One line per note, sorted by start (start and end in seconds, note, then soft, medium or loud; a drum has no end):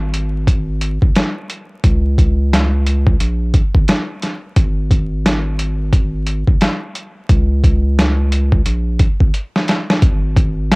0.00 0.98 G#1 loud
0.14 closed hi-hat medium
0.47 kick medium
0.47 closed hi-hat loud
0.81 closed hi-hat medium
1.02 1.12 F#1 medium
1.02 kick medium
1.15 snare loud
1.15 closed hi-hat medium
1.50 closed hi-hat medium
1.84 3.16 C#2 loud
1.84 kick loud
1.84 closed hi-hat medium
2.18 kick medium
2.18 closed hi-hat medium
2.53 snare loud
2.53 closed hi-hat loud
2.86 closed hi-hat medium
3.07 kick loud
3.20 3.61 A#1 loud
3.20 closed hi-hat loud
3.54 kick loud
3.54 closed hi-hat medium
3.75 3.85 G#1 medium
3.75 kick medium
3.88 snare loud
3.88 closed hi-hat medium
4.22 snare soft
4.22 closed hi-hat medium
4.56 6.44 G#1 loud
4.56 kick loud
4.56 closed hi-hat medium
4.91 kick medium
4.91 closed hi-hat medium
5.26 snare loud
5.26 closed hi-hat loud
5.59 closed hi-hat medium
5.93 kick loud
5.93 closed hi-hat loud
6.27 closed hi-hat medium
6.47 6.58 F#1 medium
6.47 kick medium
6.61 snare loud
6.61 closed hi-hat medium
6.95 closed hi-hat medium
7.29 8.62 C#2 loud
7.29 kick loud
7.29 closed hi-hat loud
7.64 kick medium
7.64 closed hi-hat medium
7.99 snare loud
7.99 closed hi-hat loud
8.32 closed hi-hat medium
8.52 kick medium
8.66 9.07 A#1 loud
8.66 closed hi-hat loud
8.99 kick loud
8.99 closed hi-hat medium
9.20 9.30 G#1 medium
9.20 kick medium
9.34 closed hi-hat medium
9.56 snare medium
9.68 snare medium
9.68 closed hi-hat medium
9.90 snare medium
10.02 10.75 G#1 loud
10.02 kick loud
10.02 closed hi-hat loud
10.36 kick medium
10.36 closed hi-hat medium
10.72 snare loud
10.72 closed hi-hat loud